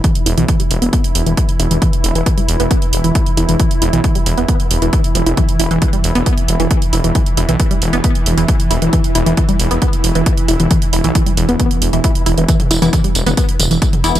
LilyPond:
<<
  \new Staff \with { instrumentName = "Synth stab" } { \time 4/4 \key c \major \tempo 4 = 135 r1 | r1 | r1 | r1 |
r1 | r1 | r1 | r8. <e b e'>16 r2 r8 <e b e'>16 r16 | }
  \new Staff \with { instrumentName = "Synth drone" } { \time 4/4 \key c \major <e e'>1~ | <e e'>1~ | <e e'>1~ | <e e'>1~ |
<e e'>1~ | <e e'>1~ | <e e'>1 | <e e'>1 | }
  \new Staff \with { instrumentName = "Synth arpeggio sound" } { \clef bass \time 4/4 \key c \major e16 r16 e'16 e16 e16 g16 r16 b16 b16 r8 e16 r8 e'16 e16 | e16 r16 e'16 e16 e16 g16 r16 b16 b16 r8 e16 r8 e'16 e16 | e16 r16 e'16 e16 e16 g16 r16 b16 b16 r8 e16 r8 f16 e'16 | e16 r16 e'16 e16 e16 g16 r16 b16 b16 r8 e16 r8 e'16 e16 |
e16 r16 e'16 e16 e16 g16 r16 b16 b16 r8 e16 r8 e'16 e16 | e16 r16 e'16 e16 e16 g16 r16 b16 b16 r8 e16 r8 e'16 e16 | e16 r16 e'16 e16 e16 g16 r16 b16 b16 r8 e16 e'16 r16 e'16 e16 | e16 r16 e'16 e16 e16 g16 r16 b16 b16 r8 e16 r8 e'16 e16 | }
  \new Staff \with { instrumentName = "Detuned saw bass" } { \clef bass \time 4/4 \key c \major r8 e,,16 b,,16 r8 e,,16 e,,16 r8 e,,16 e,,16 r8 e,,16 e,,16 | r8 e,,16 e,,16 r8 e,,16 e,,16 r8 e,,16 e,,16 r8 e,,16 e,,16 | r8 e,,16 b,,16 r8 e,,16 e,,16 r8 e,,16 e,,16 r8 e,,16 e,,16 | r8 e,,16 e,,16 r8 e,,16 e,,16 r8 e,,16 e,,16 r8 e,,16 e,,16 |
r8 e,,16 b,,16 r8 e,,16 e,,16 r8 e,,16 e,,16 r8 e,,16 e,,16 | r8 e,,16 e,,16 r8 e,,16 e,,16 r8 e,,16 e,,16 r8 e,,16 e,,16 | r8 e,,16 b,,16 r8 e,,16 e,,16 r8 e,,16 e,,16 r8 e,,16 e,,16 | r8 e,,16 e,,16 r8 e,,16 e,,16 r8 e,,16 e,,16 r8 e,,16 e,,16 | }
  \new DrumStaff \with { instrumentName = "Drums" } \drummode { \time 4/4 <hh bd>16 hh16 hho16 hh16 <hh bd>16 hh16 hho16 hh16 <hh bd>16 hh16 hho16 hh16 <hh bd>16 hh16 hho16 hh16 | <hh bd>16 hh16 hho16 hh16 <hh bd>16 hh16 hho16 hh16 <hh bd>16 hh16 hho16 hh16 <hh bd>16 hh16 hho16 hh16 | <hh bd>16 hh16 hho16 hh16 <hh bd>16 hh16 hho16 hh16 <hh bd>16 hh16 hho16 hh16 <hh bd>16 hh16 hho16 hh16 | <hh bd>16 hh16 hho16 hh16 <hh bd>16 hh16 hho16 hh16 <hh bd>16 hh16 hho16 hh16 <hh bd>16 hh16 hho16 hh16 |
<hh bd>16 hh16 hho16 hh16 <hh bd>16 hh16 hho16 hh16 <hh bd>16 hh16 hho16 hh16 <hh bd>16 hh16 hho16 hh16 | <hh bd>16 hh16 hho16 hh16 <hh bd>16 hh16 hho16 hh16 <hh bd>16 hh16 hho16 hh16 <hh bd>16 hh16 hho16 hh16 | <hh bd>16 hh16 hho16 hh16 <hh bd>16 hh16 hho16 hh16 <hh bd>16 hh16 hho16 hh16 <hh bd>16 hh16 hho16 hh16 | <hh bd tamb>16 <hh toml>16 <hho tamb>16 <hh tamb>16 <hh bd tamb toml>16 hh16 <hho tamb>16 <hh tamb toml>16 <hh bd tamb>16 hh16 <hho tamb toml>16 <hh tamb>16 <hh bd tamb>16 <hh toml>16 <hho tamb>16 <hh tamb>16 | }
>>